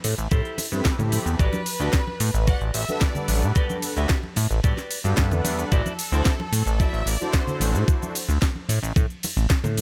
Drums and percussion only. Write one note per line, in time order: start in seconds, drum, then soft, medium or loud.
0.04 open hi-hat loud
0.04 ride medium
0.04 muted conga medium
0.04 cabasa medium
0.18 closed hi-hat medium
0.18 cabasa soft
0.31 kick loud
0.31 closed hi-hat medium
0.31 high conga loud
0.31 cabasa soft
0.45 closed hi-hat soft
0.58 open hi-hat loud
0.58 ride medium
0.58 muted conga medium
0.58 cabasa medium
0.72 closed hi-hat soft
0.72 high conga medium
0.72 cabasa soft
0.85 kick loud
0.85 snare loud
0.85 closed hi-hat medium
0.85 cabasa soft
0.99 closed hi-hat soft
0.99 muted conga medium
0.99 low conga medium
0.99 cabasa soft
1.12 open hi-hat loud
1.12 ride medium
1.12 high conga medium
1.12 cabasa medium
1.26 closed hi-hat medium
1.26 cabasa soft
1.39 kick loud
1.39 closed hi-hat medium
1.39 cabasa soft
1.53 closed hi-hat soft
1.53 muted conga medium
1.53 high conga loud
1.53 cabasa soft
1.66 open hi-hat loud
1.66 ride medium
1.66 cabasa medium
1.80 closed hi-hat medium
1.80 cabasa soft
1.93 kick loud
1.93 snare loud
1.93 closed hi-hat medium
1.93 muted conga medium
1.93 cabasa soft
2.07 high conga medium
2.20 open hi-hat loud
2.20 ride medium
2.20 cabasa medium
2.34 closed hi-hat medium
2.34 cabasa soft
2.47 kick loud
2.47 closed hi-hat medium
2.47 muted conga medium
2.47 high conga medium
2.47 cabasa soft
2.61 closed hi-hat soft
2.74 open hi-hat loud
2.74 ride medium
2.74 cabasa medium
2.88 closed hi-hat medium
2.88 muted conga medium
2.88 high conga medium
2.88 cabasa soft
3.01 kick loud
3.01 snare loud
3.01 closed hi-hat medium
3.01 cabasa soft
3.15 closed hi-hat soft
3.15 low conga medium
3.15 cabasa soft
3.28 open hi-hat loud
3.28 ride medium
3.28 high conga medium
3.28 cabasa medium
3.42 closed hi-hat medium
3.42 muted conga medium
3.42 cabasa soft
3.55 kick loud
3.55 closed hi-hat medium
3.55 cabasa soft
3.69 closed hi-hat soft
3.69 high conga medium
3.69 cabasa soft
3.82 open hi-hat loud
3.82 ride medium
3.82 muted conga soft
3.82 cabasa medium
3.97 closed hi-hat soft
3.97 cabasa soft
4.09 kick loud
4.09 snare loud
4.09 closed hi-hat medium
4.09 cabasa soft
4.23 high conga medium
4.36 open hi-hat loud
4.36 ride medium
4.36 muted conga medium
4.36 cabasa medium
4.51 closed hi-hat soft
4.51 cabasa soft
4.64 kick loud
4.64 closed hi-hat medium
4.64 high conga medium
4.64 cabasa soft
4.77 snare soft
4.77 closed hi-hat soft
4.77 muted conga medium
4.77 cabasa soft
4.91 open hi-hat loud
4.91 ride medium
4.91 cabasa medium
5.05 closed hi-hat soft
5.05 high conga medium
5.05 cabasa soft
5.17 kick loud
5.17 snare loud
5.17 closed hi-hat medium
5.17 cabasa soft
5.31 closed hi-hat soft
5.31 muted conga medium
5.31 low conga medium
5.31 cabasa soft
5.45 open hi-hat loud
5.45 ride medium
5.45 high conga medium
5.45 cabasa medium
5.59 closed hi-hat soft
5.59 cabasa soft
5.72 kick loud
5.72 closed hi-hat medium
5.72 cabasa soft
5.86 closed hi-hat soft
5.86 muted conga medium
5.86 high conga medium
5.86 cabasa soft
5.99 open hi-hat loud
5.99 ride medium
5.99 cabasa medium
6.13 closed hi-hat medium
6.13 cabasa soft
6.25 kick loud
6.25 snare loud
6.25 closed hi-hat medium
6.25 cabasa soft
6.40 muted conga medium
6.40 high conga medium
6.53 open hi-hat loud
6.53 ride medium
6.53 cabasa medium
6.67 closed hi-hat soft
6.67 cabasa soft
6.80 kick loud
6.80 closed hi-hat medium
6.80 muted conga medium
6.80 high conga loud
6.80 cabasa soft
6.94 closed hi-hat soft
7.07 open hi-hat loud
7.07 ride medium
7.07 cabasa medium
7.21 closed hi-hat soft
7.21 high conga medium
7.21 cabasa soft
7.33 kick loud
7.33 snare loud
7.33 closed hi-hat medium
7.33 muted conga medium
7.33 cabasa soft
7.47 closed hi-hat soft
7.47 low conga medium
7.47 cabasa soft
7.61 open hi-hat loud
7.61 ride medium
7.61 high conga medium
7.61 cabasa medium
7.75 closed hi-hat medium
7.75 muted conga medium
7.75 cabasa soft
7.88 kick loud
7.88 closed hi-hat medium
7.88 cabasa soft
8.02 closed hi-hat soft
8.02 high conga medium
8.02 cabasa soft
8.15 open hi-hat loud
8.15 ride medium
8.15 cabasa medium
8.29 closed hi-hat medium
8.29 muted conga medium
8.29 cabasa soft
8.42 kick loud
8.42 snare loud
8.42 closed hi-hat medium
8.42 cabasa soft
8.55 high conga medium
8.69 open hi-hat loud
8.69 ride medium
8.69 muted conga medium
8.69 cabasa medium
8.83 closed hi-hat medium
8.83 cabasa soft
8.96 kick loud
8.96 closed hi-hat medium
8.96 high conga medium
8.96 cabasa soft
9.10 closed hi-hat soft
9.23 open hi-hat medium
9.23 ride medium
9.23 muted conga medium
9.23 cabasa medium
9.37 closed hi-hat medium
9.37 high conga medium
9.37 cabasa soft
9.50 kick loud
9.50 snare loud
9.50 closed hi-hat medium
9.50 cabasa soft
9.64 closed hi-hat soft
9.64 muted conga soft
9.64 low conga medium
9.64 cabasa soft
9.77 open hi-hat loud
9.77 ride medium
9.77 high conga medium